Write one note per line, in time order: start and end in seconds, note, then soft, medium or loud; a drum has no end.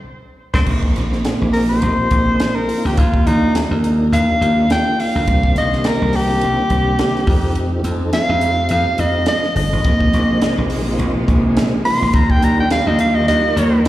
0.53 0.64 C2 medium
0.53 0.62 A#3 medium
0.53 0.62 C4 medium
0.53 0.61 C4 medium
0.53 0.62 D#4 medium
0.53 0.60 C5 medium
0.53 kick medium
0.53 snare medium
0.65 0.92 A#1 medium
0.65 1.08 F3 medium
0.65 1.08 A#3 medium
0.65 1.08 C4 medium
0.65 1.08 D#4 medium
0.65 1.08 G#4 medium
0.65 kick medium
0.65 crash medium
0.83 kick medium
0.96 1.21 A#1 medium
0.96 snare soft
0.96 closed hi-hat medium
1.10 1.65 F3 medium
1.10 1.65 A#3 medium
1.10 1.65 C4 medium
1.10 1.66 D#4 medium
1.10 1.65 G#4 medium
1.10 snare soft
1.25 snare loud
1.25 closed hi-hat medium
1.41 1.78 A#1 medium
1.53 1.68 A#4 medium
1.53 open hi-hat medium
1.69 2.09 F3 medium
1.69 2.09 A#3 medium
1.69 2.09 C4 medium
1.69 2.09 D#4 medium
1.69 2.10 G4 medium
1.69 2.57 C5 medium
1.82 1.96 A#1 medium
1.82 closed hi-hat medium
2.11 2.36 A#1 medium
2.11 2.66 F3 medium
2.11 2.66 A#3 medium
2.11 2.66 C4 medium
2.11 2.66 D#4 medium
2.11 2.66 G#4 medium
2.11 kick medium
2.11 closed hi-hat medium
2.40 snare loud
2.40 closed hi-hat medium
2.55 2.88 A#4 medium
2.68 2.97 F3 medium
2.68 2.97 A#3 medium
2.68 2.97 C4 medium
2.68 2.97 D#4 medium
2.68 2.97 F4 medium
2.68 open hi-hat medium
2.85 2.96 D2 medium
2.85 2.99 G4 medium
2.97 3.23 D#2 medium
2.97 3.29 F4 medium
2.97 kick medium
2.97 closed hi-hat medium
3.14 kick medium
3.26 3.52 D#2 medium
3.26 3.68 F3 medium
3.26 3.68 A#3 medium
3.26 3.68 D4 medium
3.26 3.68 D#4 medium
3.26 3.55 D#4 loud
3.26 3.69 G4 medium
3.26 closed hi-hat medium
3.55 snare loud
3.55 closed hi-hat medium
3.70 4.07 D#2 medium
3.70 4.24 F3 medium
3.70 4.24 A#3 medium
3.70 4.24 D4 medium
3.70 4.25 D#4 medium
3.70 4.25 A#4 medium
3.84 closed hi-hat medium
4.12 4.26 D#2 medium
4.12 4.69 F5 medium
4.12 closed hi-hat medium
4.28 4.67 F3 medium
4.28 4.67 A#3 medium
4.28 4.68 D4 medium
4.28 4.68 D#4 medium
4.28 4.68 G4 medium
4.41 4.66 D#2 medium
4.41 closed hi-hat medium
4.70 5.24 F3 medium
4.70 5.25 A#3 medium
4.70 5.25 D4 medium
4.70 5.25 D#4 medium
4.70 5.25 F4 medium
4.70 5.02 G5 medium
4.70 snare loud
4.70 closed hi-hat medium
5.00 5.55 F5 medium
5.00 open hi-hat medium
5.15 5.26 D2 medium
5.27 5.53 C2 medium
5.27 5.69 D#3 medium
5.27 5.69 A#3 medium
5.27 5.69 C4 medium
5.27 5.69 D4 medium
5.27 5.69 G4 medium
5.27 kick medium
5.27 closed hi-hat medium
5.43 kick medium
5.56 5.82 C2 medium
5.56 5.89 D#5 medium
5.56 snare soft
5.56 closed hi-hat medium
5.72 6.25 D#3 medium
5.72 6.26 A#3 medium
5.72 6.26 C4 medium
5.72 6.26 D4 medium
5.72 6.26 G4 medium
5.72 snare soft
5.84 6.17 A#4 medium
5.84 snare loud
5.84 closed hi-hat medium
6.02 6.38 C2 medium
6.13 7.83 G4 loud
6.13 open hi-hat medium
6.28 6.68 D#3 medium
6.28 6.68 A#3 medium
6.28 6.68 C4 medium
6.28 6.68 D4 medium
6.28 6.68 F4 medium
6.28 snare soft
6.41 6.57 C2 medium
6.41 closed hi-hat medium
6.70 6.96 C2 medium
6.70 7.24 D#3 medium
6.70 7.25 A#3 medium
6.70 7.24 C4 medium
6.70 7.25 D4 medium
6.70 7.25 G4 medium
6.70 kick medium
6.70 closed hi-hat medium
6.99 snare loud
6.99 closed hi-hat medium
7.16 snare soft
7.27 7.78 F2 medium
7.27 7.82 F3 medium
7.27 7.82 A3 medium
7.27 7.82 C4 medium
7.27 7.82 D#4 medium
7.27 7.82 G4 medium
7.27 kick medium
7.27 open hi-hat medium
7.55 closed hi-hat medium
7.84 8.10 F2 medium
7.84 8.26 F3 medium
7.84 8.27 A3 medium
7.84 8.27 C4 medium
7.84 8.27 D#4 medium
7.84 8.27 A4 loud
7.84 closed hi-hat medium
8.13 8.69 F5 loud
8.13 snare loud
8.13 closed hi-hat medium
8.28 8.66 F2 medium
8.28 8.82 F3 medium
8.28 8.82 A3 medium
8.28 8.82 C4 medium
8.28 8.83 D#4 medium
8.28 8.83 G4 medium
8.41 closed hi-hat medium
8.69 8.85 F2 medium
8.69 9.01 F5 medium
8.69 closed hi-hat medium
8.85 9.25 F3 medium
8.85 9.25 A3 medium
8.85 9.25 C4 medium
8.85 9.25 D#4 medium
8.85 9.25 G4 medium
8.98 9.24 F2 medium
8.98 9.28 D#5 medium
8.98 closed hi-hat medium
9.26 9.81 F3 medium
9.26 9.81 A3 medium
9.26 9.82 C4 medium
9.26 9.82 D#4 medium
9.26 9.82 A4 medium
9.26 9.56 D#5 medium
9.26 snare loud
9.26 closed hi-hat medium
9.43 snare soft
9.55 9.70 G1 medium
9.55 10.68 D#5 medium
9.55 open hi-hat medium
9.73 9.84 A1 medium
9.84 10.10 A#1 medium
9.84 12.12 C3 medium
9.84 10.27 F3 medium
9.84 12.12 G#3 medium
9.84 10.27 A#3 medium
9.84 10.27 C4 medium
9.84 10.27 D#4 medium
9.84 10.27 G#4 medium
9.84 kick medium
9.84 closed hi-hat medium
10.01 kick medium
10.13 10.39 A#1 medium
10.13 closed hi-hat medium
10.28 10.82 F3 medium
10.28 10.82 A#3 medium
10.28 10.82 C4 medium
10.28 10.83 D#4 medium
10.28 10.83 G#4 medium
10.42 snare loud
10.42 closed hi-hat medium
10.58 10.94 A#1 medium
10.70 open hi-hat medium
10.85 11.25 F3 medium
10.85 11.25 A#3 medium
10.85 11.25 C4 medium
10.85 11.26 D#4 medium
10.85 11.25 F4 loud
10.99 11.13 A#1 medium
10.99 closed hi-hat medium
11.27 11.53 A#1 medium
11.27 11.81 F3 medium
11.27 11.82 A#3 medium
11.27 11.82 C4 medium
11.27 11.82 D#4 medium
11.27 11.82 G#4 medium
11.27 kick medium
11.27 closed hi-hat medium
11.57 snare loud
11.57 closed hi-hat medium
11.85 12.14 F3 medium
11.85 12.14 A#3 medium
11.85 12.14 C4 medium
11.85 12.14 D#4 medium
11.85 12.14 F4 medium
11.85 12.16 C6 loud
11.85 open hi-hat medium
12.02 12.13 A#1 medium
12.12 12.39 D#2 medium
12.12 13.88 D#3 medium
12.12 13.88 G3 medium
12.12 12.32 A#5 medium
12.12 kick loud
12.12 closed hi-hat medium
12.30 12.46 G5 loud
12.30 kick medium
12.41 12.67 D#2 medium
12.41 12.83 F3 medium
12.41 12.84 A#3 medium
12.41 12.83 D4 medium
12.41 12.84 D#4 medium
12.41 12.84 G4 medium
12.41 12.58 A#5 medium
12.41 closed hi-hat medium
12.60 12.71 G5 medium
12.71 12.89 F5 medium
12.71 snare loud
12.71 closed hi-hat medium
12.87 13.23 D#2 medium
12.87 13.40 F3 medium
12.87 13.40 A#3 medium
12.87 13.40 D4 medium
12.87 13.40 D#4 medium
12.87 13.40 F4 medium
12.87 12.99 D#5 medium
12.99 13.17 F5 medium
12.99 closed hi-hat medium
13.15 13.27 D#5 medium
13.28 13.42 D#2 medium
13.28 13.83 D#5 medium
13.28 closed hi-hat medium
13.42 13.82 F3 medium
13.42 13.82 A#3 medium
13.42 13.82 D#4 medium
13.42 13.82 A#4 medium
13.56 13.81 D#2 medium
13.56 closed hi-hat medium